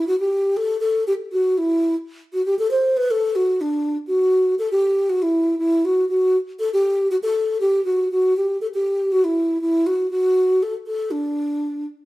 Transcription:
0.07 0.18 F#4 loud
0.20 0.58 G4 medium
0.57 0.79 A4 loud
0.80 1.04 A4 medium
1.07 1.13 G4 medium
1.32 1.59 F#4 medium
1.58 1.95 E4 medium
2.33 2.44 F#4 medium
2.46 2.57 G4 medium
2.59 2.70 A4 loud
2.71 2.99 C5 medium
2.97 3.12 B4 medium
3.11 3.37 A4 loud
3.35 3.62 F#4 medium
3.61 3.97 D4 medium
4.07 4.55 F#4 medium
4.59 4.70 A4 medium
4.71 5.11 G4 medium
5.09 5.24 F#4 medium
5.22 5.58 E4 medium
5.58 5.86 E4 medium
5.85 6.08 F#4 medium
6.09 6.37 F#4 loud
6.59 6.72 A4 loud
6.73 7.08 G4 medium
7.11 7.16 F#4 medium
7.23 7.58 A4 medium
7.60 7.84 G4 medium
7.85 8.08 F#4 medium
8.11 8.34 F#4 medium
8.37 8.59 G4 medium
8.61 8.67 A4 loud
8.74 9.13 G4 medium
9.12 9.26 F#4 medium
9.24 9.61 E4 medium
9.61 9.88 E4 medium
9.86 10.10 F#4 medium
10.10 10.64 F#4 medium
10.63 10.74 A4 medium
10.87 11.12 A4 medium
11.11 11.85 D4 medium

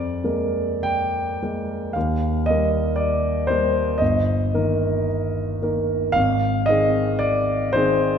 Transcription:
0.00 0.21 F2 soft
0.00 0.84 D5 medium
0.24 1.38 G#3 soft
0.24 1.38 A#3 soft
0.24 1.39 A#4 soft
0.83 1.94 G5 medium
1.42 1.92 G#3 soft
1.42 1.92 A#3 soft
1.42 1.92 A#4 soft
1.93 2.47 D#2 soft
1.93 2.47 F5 medium
2.46 3.46 G3 soft
2.46 3.46 A#3 soft
2.46 2.98 D#5 medium
2.50 3.46 A#4 soft
2.96 3.48 D5 medium
3.47 3.98 G3 soft
3.47 3.98 A#3 soft
3.47 3.98 A#4 soft
3.47 4.00 C5 medium
3.98 4.53 G1 soft
3.98 5.08 D#5 medium
4.54 5.59 D#3 soft
4.54 5.59 A#3 soft
4.54 5.59 A#4 soft
5.62 6.12 D#3 soft
5.62 6.12 A#3 soft
5.62 6.12 A#4 soft
6.12 6.67 G#1 soft
6.12 6.67 F5 medium
6.66 7.72 D#3 soft
6.66 7.73 C4 soft
6.66 7.21 D#5 medium
6.70 7.73 G#4 soft
7.19 7.75 D5 medium
7.73 8.18 D#3 soft
7.73 8.18 C4 soft
7.73 8.18 G#4 soft
7.73 8.18 C5 medium

